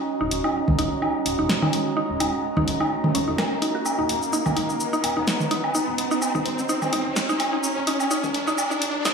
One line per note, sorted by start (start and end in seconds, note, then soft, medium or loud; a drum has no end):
0.00 9.14 C#4 medium
0.00 9.14 F#4 medium
0.00 9.14 D#5 loud
0.00 9.14 A#5 medium
0.00 riser medium
0.21 0.29 D#1 loud
0.21 0.23 D#4 loud
0.31 0.41 D#1 loud
0.31 open hi-hat medium
0.44 0.47 D#4 medium
0.44 low woodblock soft
0.68 0.76 C#2 loud
0.68 mid tom medium
0.79 0.89 D#1 medium
0.79 0.81 D#4 loud
0.79 open hi-hat medium
1.02 1.06 D#4 medium
1.02 low woodblock soft
1.26 1.36 D#1 medium
1.26 open hi-hat loud
1.39 1.47 F1 medium
1.39 1.41 D#4 loud
1.49 snare loud
1.62 1.66 D#4 medium
1.62 mid tom medium
1.62 low woodblock soft
1.73 open hi-hat medium
1.97 1.99 D#4 loud
2.10 2.18 D#1 loud
2.20 2.30 D#1 loud
2.20 2.24 D#4 medium
2.20 open hi-hat medium
2.20 low woodblock soft
2.57 2.65 C#2 loud
2.57 2.59 D#4 loud
2.57 mid tom medium
2.68 2.78 D#1 medium
2.68 open hi-hat medium
2.80 2.84 D#4 medium
2.80 low woodblock soft
3.04 mid tom medium
3.15 3.25 D#1 medium
3.15 3.20 C#4 medium
3.15 open hi-hat medium
3.28 3.36 F1 medium
3.28 3.31 D#4 medium
3.38 3.44 A#4 loud
3.38 snare loud
3.38 low woodblock soft
3.62 3.66 D#4 medium
3.62 open hi-hat medium
3.75 3.80 F#4 medium
3.86 cabasa medium
3.86 low woodblock soft
3.99 4.07 D#1 loud
3.99 4.02 D#4 medium
4.09 4.19 D#1 loud
4.09 open hi-hat medium
4.22 cabasa soft
4.33 4.35 D#4 loud
4.33 cabasa medium
4.46 4.54 C#2 loud
4.46 mid tom medium
4.46 cabasa soft
4.46 low woodblock soft
4.57 4.67 D#1 medium
4.57 4.60 D#4 medium
4.57 open hi-hat medium
4.70 cabasa soft
4.80 cabasa medium
4.93 4.95 D#4 loud
4.93 cabasa soft
5.04 5.14 D#1 medium
5.04 open hi-hat medium
5.04 low woodblock soft
5.17 5.25 F1 medium
5.17 5.20 D#4 medium
5.27 snare loud
5.27 cabasa medium
5.40 mid tom medium
5.40 cabasa soft
5.51 5.53 D#4 loud
5.51 open hi-hat medium
5.64 low woodblock soft
5.75 5.78 D#4 medium
5.75 cabasa medium
5.88 5.96 D#1 loud
5.98 6.08 D#1 loud
5.98 open hi-hat medium
6.11 6.13 D#4 loud
6.11 cabasa soft
6.22 cabasa medium
6.22 low woodblock soft
6.35 6.43 C#2 loud
6.35 6.38 D#4 medium
6.35 mid tom medium
6.35 cabasa soft
6.45 6.55 D#1 medium
6.45 open hi-hat medium
6.58 cabasa soft
6.69 6.71 D#4 loud
6.69 cabasa medium
6.82 mid tom medium
6.82 cabasa soft
6.82 low woodblock soft
6.93 7.03 D#1 medium
6.93 6.97 D#4 medium
6.93 open hi-hat medium
7.06 7.14 F1 medium
7.16 snare loud
7.16 cabasa medium
7.29 7.31 D#4 loud
7.29 cabasa soft
7.40 open hi-hat medium
7.40 low woodblock soft
7.53 7.56 D#4 medium
7.63 cabasa medium
7.77 7.85 D#1 loud
7.87 7.97 D#1 loud
7.87 7.90 D#4 loud
7.87 open hi-hat medium
8.00 cabasa soft
8.00 low woodblock soft
8.11 8.15 D#4 medium
8.11 cabasa medium
8.24 8.32 C#2 loud
8.24 mid tom medium
8.24 cabasa soft
8.34 8.44 D#1 medium
8.34 open hi-hat medium
8.47 8.49 D#4 loud
8.47 cabasa soft
8.58 cabasa medium
8.58 low woodblock soft
8.71 8.74 D#4 medium
8.71 cabasa soft
8.82 8.92 D#1 medium
8.82 open hi-hat medium
8.95 9.03 F1 medium
9.05 9.08 D#4 loud
9.05 snare loud
9.05 cabasa medium